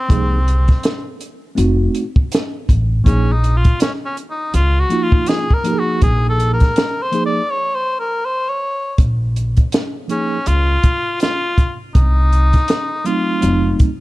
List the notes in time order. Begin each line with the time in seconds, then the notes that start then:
Already playing: C4
0.08 C2 F3 A#3 D#4 G#4, kick, closed hi-hat
0.48 closed hi-hat
0.68 kick, snare, closed hi-hat
0.83 snare, closed hi-hat
1.21 closed hi-hat
1.55 F1 A3 C4 D#4 F#4, closed hi-hat
1.95 closed hi-hat
2.16 kick
2.32 snare, closed hi-hat
2.69 A1, kick, closed hi-hat
3.04 A#1 F3 A#3 C#4 D#4 G#4, kick, closed hi-hat
3.32 D#4
3.44 closed hi-hat
3.57 F4
3.64 kick, closed hi-hat
3.80 C#4, snare, closed hi-hat
4.05 C#4
4.17 closed hi-hat
4.30 D#4
4.54 C#2 F4, closed hi-hat
4.80 F#4
4.89 F3 A#3 D#4 F4, closed hi-hat
5.03 F4
5.12 kick
5.26 G#4, snare, closed hi-hat
5.51 A#4, kick
5.64 F3 A#3 D#4 G4, closed hi-hat
5.73 G#4
5.79 F#4
6.02 A#1 G#4, kick, closed hi-hat
6.29 A4
6.40 closed hi-hat
6.53 A#4
6.60 kick, snare, closed hi-hat
6.76 snare, closed hi-hat
7.02 C5
7.12 F3 A#3 D#4 G#4, closed hi-hat
7.26 D5
7.51 C#5
7.75 C5
8.00 A#4
8.25 C5
8.49 C#5
8.98 A#1, kick, closed hi-hat
9.36 closed hi-hat
9.57 kick, closed hi-hat
9.72 snare, closed hi-hat
10.08 F3 A#3 C#4 D#4 G#4, closed hi-hat
10.46 C#2 F4, closed hi-hat
10.83 kick, closed hi-hat
11.20 F4, snare, closed hi-hat
11.58 kick, closed hi-hat
11.95 C2 D#4, kick, closed hi-hat
12.32 closed hi-hat
12.53 kick, snare, closed hi-hat
12.68 snare, closed hi-hat
13.05 F#3 A3 C4 D#4 F4, closed hi-hat
13.41 F1 F#3 A3 C4 D#4, closed hi-hat
13.79 kick, closed hi-hat